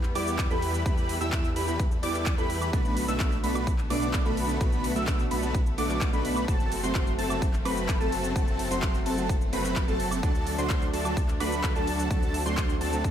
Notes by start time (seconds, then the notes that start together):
Already playing: E2 E3 G3 B3
0.03 clap, closed hi-hat, shaker
0.15 E2 G3 B3 E4 G4 B4 D5 D6, open hi-hat, ride, high woodblock
0.27 closed hi-hat, shaker
0.39 kick, clap, closed hi-hat, ride, shaker
0.50 E2 G3 B3 E4 G4 A4 B4 B5, closed hi-hat, shaker
0.62 open hi-hat, ride
0.74 closed hi-hat, shaker
0.85 E2 G3 A3 B3 E4 G4 B4 B5, kick, closed hi-hat, ride, shaker
0.97 closed hi-hat, shaker
1.09 open hi-hat, ride
1.21 E2 G3 B3 E4 G4 E5 E6, closed hi-hat, shaker
1.32 kick, clap, closed hi-hat, ride, shaker
1.44 closed hi-hat, shaker
1.56 E2 E4 G4 B4 B5, open hi-hat, ride
1.67 G3 B3 E4 G4, closed hi-hat, shaker
1.79 kick, closed hi-hat, ride, shaker
1.91 closed hi-hat, shaker
2.02 E2 G3 B3 E4 G4 B4 D5 D6, open hi-hat, ride
2.14 clap, closed hi-hat, shaker
2.26 kick, clap, closed hi-hat, ride, shaker
2.37 E2 G3 B3 E4 G4 A4 B4 B5, closed hi-hat, shaker
2.50 open hi-hat, ride
2.62 closed hi-hat, high woodblock, shaker
2.72 B1 B2 D3 A3 B3 D4 F#4 B4 B5, kick, closed hi-hat, ride, shaker
2.85 closed hi-hat, shaker
2.97 open hi-hat, ride
3.07 B1 B2 A3 B3 D4 F#4 E5 E6, closed hi-hat, shaker
3.20 kick, clap, closed hi-hat, ride, shaker
3.32 closed hi-hat, shaker
3.43 B1 A3 B3 D4 F#4 B4 B5, open hi-hat, ride
3.55 B2 A3 B3 D4 F#4, closed hi-hat, high woodblock, shaker
3.67 kick, closed hi-hat, ride, shaker
3.78 clap, closed hi-hat, shaker
3.90 B1 B2 A3 B3 D4 F#4 B4 D5 D6, open hi-hat, ride, high woodblock
4.02 closed hi-hat, shaker
4.14 kick, clap, closed hi-hat, ride, shaker
4.25 B1 B2 A3 B3 D4 F#4 A4 B4 B5, closed hi-hat, shaker
4.37 open hi-hat, ride
4.49 closed hi-hat, shaker
4.60 B1 B2 A3 B3 D4 F#4 B4 B5, kick, closed hi-hat, ride, shaker
4.72 closed hi-hat, shaker
4.84 open hi-hat, ride
4.95 B1 B2 A3 B3 D4 F#4 E5 E6, closed hi-hat, shaker
5.07 kick, clap, closed hi-hat, ride, shaker
5.19 closed hi-hat, shaker
5.31 B1 A3 B3 D4 F#4 B4 B5, open hi-hat, ride
5.42 B2 A3 B3 D4 F#4, closed hi-hat, shaker
5.54 kick, closed hi-hat, ride, shaker
5.66 closed hi-hat, shaker
5.77 B1 B2 A3 B3 D4 F#4 A4 D5 D6, open hi-hat, ride
5.89 B2 A3 B3 D4 F#4, clap, closed hi-hat, shaker
6.01 kick, clap, closed hi-hat, ride, shaker
6.12 B1 B2 A3 B3 D4 F#4 B4 B5, closed hi-hat, shaker
6.25 open hi-hat, ride
6.36 closed hi-hat, high woodblock, shaker
6.47 F#1 F#3 A3 C4 F#4 A4 A5, kick, closed hi-hat, ride, shaker
6.60 closed hi-hat, shaker
6.72 open hi-hat, ride
6.83 F#1 F#3 A3 C4 F#4 C5 C6, closed hi-hat, shaker
6.95 kick, clap, closed hi-hat, ride, shaker
7.07 closed hi-hat, shaker
7.18 F#1 C4 F#4 A4 A5, open hi-hat, ride
7.30 F#3 A3 C4 F#4, closed hi-hat, high woodblock, shaker
7.42 kick, closed hi-hat, ride, shaker
7.53 clap, closed hi-hat, shaker
7.65 F#1 F#3 A3 C4 F#4 B4 B5, open hi-hat, ride, high woodblock
7.77 closed hi-hat, shaker
7.89 kick, clap, closed hi-hat, ride, shaker
8.00 F#1 F#3 A3 C4 F#4 A4 A5, closed hi-hat, shaker
8.12 open hi-hat, ride
8.24 closed hi-hat, shaker
8.35 F#1 F#3 A3 C4 F#4 A4 A5, kick, closed hi-hat, ride, shaker
8.48 closed hi-hat, shaker
8.59 open hi-hat, ride
8.70 F#1 F#3 A3 C4 F#4 C5 C6, closed hi-hat, shaker
8.82 kick, clap, closed hi-hat, ride, shaker
8.94 closed hi-hat, shaker
9.06 F#1 C4 F#4 A4 A5, open hi-hat, ride
9.17 F#3 A3 C4 F#4, closed hi-hat, shaker
9.29 kick, closed hi-hat, ride, shaker
9.41 closed hi-hat, shaker
9.52 F#1 F#3 A3 C4 F#4 B4 B5, open hi-hat, ride
9.64 clap, closed hi-hat, shaker
9.76 kick, clap, closed hi-hat, ride, shaker
9.87 F#1 F#3 A3 C4 F#4 A4 A5, closed hi-hat, shaker
10.00 open hi-hat, ride
10.11 closed hi-hat, high woodblock, shaker
10.22 D2 F#3 A3 D4 F#4 A4 A5, kick, closed hi-hat, ride, shaker
10.35 closed hi-hat, shaker
10.47 open hi-hat, ride
10.58 D2 F#3 A3 D4 F#4 C5 C6, closed hi-hat, shaker
10.70 kick, clap, closed hi-hat, ride, shaker
10.82 closed hi-hat, shaker
10.93 D2 D4 F#4 A4 A5, open hi-hat, ride
11.04 F#3 A3 D4 F#4, closed hi-hat, high woodblock, shaker
11.17 kick, closed hi-hat, ride, shaker
11.28 clap, closed hi-hat, shaker
11.40 D2 F#3 A3 D4 F#4 B4 B5, open hi-hat, ride, high woodblock
11.52 closed hi-hat, shaker
11.64 kick, clap, closed hi-hat, ride, shaker
11.75 D2 F#3 A3 D4 F#4 A4 A5, closed hi-hat, shaker
11.87 open hi-hat, ride
11.99 closed hi-hat, shaker
12.10 D2 F#3 A3 C4 D4 F#4 A4 A5, kick, closed hi-hat, ride, shaker
12.22 closed hi-hat, shaker
12.34 open hi-hat, ride
12.45 D2 F#3 A3 D4 F#4 C5 C6, closed hi-hat, shaker
12.57 kick, clap, closed hi-hat, ride, shaker
12.69 closed hi-hat, shaker
12.81 D2 D4 F#4 A4 A5, open hi-hat, ride
12.92 F#3 A3 D4 F#4, closed hi-hat, shaker
13.04 kick, closed hi-hat, ride, shaker